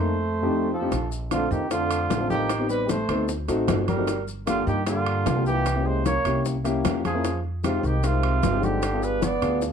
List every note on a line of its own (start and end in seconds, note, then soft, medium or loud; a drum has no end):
0.00 0.48 F2 medium
0.00 0.71 A3 medium
0.00 0.12 A#3 medium
0.00 0.12 D4 medium
0.00 0.12 D#4 medium
0.00 0.13 A#4 medium
0.00 0.72 C5 medium
0.42 0.70 F2 medium
0.42 0.70 A3 medium
0.42 0.70 D4 medium
0.42 0.70 D#4 medium
0.42 0.70 G4 medium
0.72 1.09 F3 medium
0.72 1.09 A4 medium
0.81 0.91 F2 medium
0.81 0.91 A3 medium
0.81 0.92 D4 medium
0.81 0.92 D#4 medium
0.81 0.92 G4 medium
0.91 1.47 A#1 medium
0.91 high bongo medium
0.91 high conga soft
0.91 high timbale medium
0.91 maracas medium
1.12 high conga soft
1.12 maracas medium
1.31 1.49 D3 medium
1.31 1.59 A3 medium
1.31 1.59 C4 medium
1.31 1.59 D4 medium
1.31 1.50 F4 medium
1.31 1.59 F4 medium
1.31 high bongo soft
1.31 high conga medium
1.31 high timbale medium
1.31 low timbale medium
1.31 maracas medium
1.51 2.06 F2 medium
1.51 1.69 D#3 medium
1.51 1.69 G4 medium
1.51 high conga soft
1.51 maracas soft
1.70 2.26 D3 medium
1.70 2.05 A3 medium
1.70 2.05 C4 medium
1.70 2.05 D4 medium
1.70 2.26 F4 medium
1.70 2.05 F4 medium
1.70 high bongo medium
1.70 high conga soft
1.70 high timbale medium
1.70 maracas medium
1.91 high conga soft
1.91 high timbale medium
1.91 maracas medium
2.10 3.03 A1 medium
2.10 high bongo medium
2.10 low bongo medium
2.10 high conga medium
2.10 high timbale medium
2.10 low timbale medium
2.10 maracas medium
2.20 2.48 A3 medium
2.20 2.48 C4 medium
2.20 2.48 D4 medium
2.20 2.48 F4 medium
2.29 2.66 D#3 medium
2.29 2.67 G4 medium
2.29 high conga medium
2.29 maracas soft
2.49 high bongo medium
2.49 high conga soft
2.49 high timbale medium
2.49 maracas medium
2.59 2.94 B3 medium
2.59 2.94 C4 medium
2.59 2.94 D#4 medium
2.59 2.95 G4 medium
2.69 2.90 G3 medium
2.69 2.92 B4 medium
2.69 high conga soft
2.69 maracas medium
2.89 3.29 A3 medium
2.89 3.29 C5 medium
2.89 high bongo medium
2.89 high conga medium
2.89 high timbale medium
2.89 low timbale medium
2.89 maracas medium
3.09 3.46 D2 medium
3.09 3.29 B3 medium
3.09 3.29 C4 medium
3.09 3.29 D#4 medium
3.09 3.29 A4 medium
3.09 high bongo soft
3.09 high conga soft
3.09 high timbale medium
3.09 maracas soft
3.29 high bongo medium
3.29 high conga soft
3.29 maracas medium
3.48 3.67 A1 medium
3.48 3.83 A3 medium
3.48 3.83 C4 medium
3.48 3.83 D#4 medium
3.48 3.84 F#4 loud
3.48 high bongo soft
3.48 high conga soft
3.48 high timbale medium
3.48 maracas medium
3.68 4.61 G1 medium
3.68 high bongo medium
3.68 low bongo medium
3.68 high conga medium
3.68 high timbale medium
3.68 low timbale medium
3.68 maracas medium
3.88 4.25 G3 medium
3.88 4.25 A#4 medium
3.88 high bongo soft
3.88 high conga medium
3.88 high timbale medium
3.88 maracas soft
3.97 4.08 A3 medium
3.97 4.08 C4 medium
3.97 4.08 D#4 medium
3.97 4.08 F#4 medium
4.07 high bongo medium
4.07 high conga soft
4.07 high timbale medium
4.07 maracas medium
4.28 high conga soft
4.28 maracas soft
4.47 4.66 D3 medium
4.47 4.75 A#3 medium
4.47 4.75 D4 medium
4.47 4.75 F4 medium
4.47 4.66 F4 medium
4.47 4.75 G4 medium
4.47 high bongo medium
4.47 high conga medium
4.47 high timbale medium
4.47 low timbale medium
4.47 maracas medium
4.67 5.22 G2 medium
4.67 4.85 D#3 medium
4.67 4.86 G4 medium
4.67 high conga soft
4.67 maracas soft
4.86 5.42 D3 medium
4.86 5.21 A#3 medium
4.86 5.22 D4 medium
4.86 5.42 F4 medium
4.86 5.22 F4 medium
4.86 5.22 G4 medium
4.86 high bongo medium
4.86 high conga soft
4.86 high timbale medium
4.86 maracas medium
5.06 high conga soft
5.06 high timbale medium
5.26 6.19 C2 medium
5.26 high bongo medium
5.26 low bongo medium
5.26 high conga medium
5.26 high timbale medium
5.26 low timbale medium
5.26 maracas medium
5.36 5.64 A#3 medium
5.36 5.64 D4 medium
5.36 5.64 F4 medium
5.36 5.65 G4 medium
5.46 5.87 E3 medium
5.46 5.88 G4 medium
5.46 maracas soft
5.66 high bongo medium
5.66 high conga soft
5.66 high timbale medium
5.66 maracas medium
5.76 6.11 A#3 medium
5.76 6.11 C#4 medium
5.76 6.11 E4 medium
5.76 6.11 G4 medium
5.85 6.04 G#3 medium
5.85 6.06 C5 medium
5.85 high conga soft
6.05 6.42 A#3 medium
6.05 6.43 C#5 medium
6.05 high bongo soft
6.05 high conga medium
6.05 high timbale medium
6.05 low timbale medium
6.05 maracas medium
6.25 6.81 C2 medium
6.25 6.53 A#3 medium
6.25 6.53 C#4 medium
6.25 6.53 E4 medium
6.25 6.54 G4 medium
6.25 high bongo soft
6.25 high conga soft
6.25 high timbale medium
6.25 maracas soft
6.45 high bongo medium
6.45 high conga soft
6.45 maracas medium
6.64 6.99 A#3 medium
6.64 7.00 C#4 medium
6.64 7.00 E4 medium
6.64 7.00 G4 loud
6.64 high bongo soft
6.64 high conga soft
6.64 high timbale medium
6.64 maracas medium
6.84 7.78 F2 medium
6.84 high bongo medium
6.84 low bongo medium
6.84 high conga medium
6.84 high timbale medium
6.84 low timbale medium
6.84 maracas medium
7.04 7.41 F3 medium
7.04 7.42 G#4 medium
7.04 high bongo soft
7.04 high conga medium
7.04 high timbale medium
7.04 maracas soft
7.14 7.24 A#3 medium
7.14 7.25 C#4 medium
7.14 7.25 E4 medium
7.14 7.25 A#4 medium
7.24 high bongo medium
7.24 high conga soft
7.24 high timbale medium
7.24 maracas medium
7.44 high conga soft
7.64 7.85 C3 medium
7.64 7.92 G#3 medium
7.64 7.92 C4 medium
7.64 7.92 D#4 medium
7.64 7.87 F4 medium
7.64 7.92 G4 medium
7.64 high bongo medium
7.64 high conga medium
7.64 high timbale medium
7.64 low timbale medium
7.64 maracas medium
7.83 8.39 C2 medium
7.83 8.05 D#3 medium
7.83 8.07 G4 medium
7.83 high conga soft
7.83 maracas soft
8.03 8.64 C3 medium
8.03 8.38 G#3 medium
8.03 8.38 C4 medium
8.03 8.38 D#4 medium
8.03 8.65 F4 medium
8.03 8.39 A#4 medium
8.03 high bongo medium
8.03 high conga soft
8.03 high timbale medium
8.03 maracas medium
8.23 high conga soft
8.23 high timbale medium
8.43 9.36 G1 medium
8.43 high bongo medium
8.43 low bongo medium
8.43 high conga medium
8.43 high timbale medium
8.43 low timbale medium
8.43 maracas medium
8.53 8.81 G#3 medium
8.53 8.81 C4 medium
8.53 8.81 D#4 medium
8.53 8.81 G4 medium
8.63 9.04 D3 medium
8.63 9.05 G4 medium
8.63 high conga medium
8.63 maracas soft
8.82 high bongo medium
8.82 high conga soft
8.82 high timbale medium
8.82 maracas medium
8.92 9.27 B3 medium
8.92 9.27 D4 medium
8.92 9.28 F4 medium
8.92 9.28 G#4 medium
9.02 9.23 G3 medium
9.02 9.25 B4 medium
9.02 high conga soft
9.02 maracas soft
9.22 9.62 B3 medium
9.22 9.63 D5 medium
9.22 high bongo medium
9.22 high conga medium
9.22 high timbale medium
9.22 low timbale medium
9.22 maracas medium
9.41 9.72 D2 medium
9.41 9.70 B3 medium
9.41 9.70 D4 medium
9.41 9.70 F4 medium
9.41 9.70 G#4 medium
9.41 high bongo soft
9.41 high timbale medium
9.41 maracas soft
9.62 high bongo medium
9.62 high conga soft
9.62 maracas medium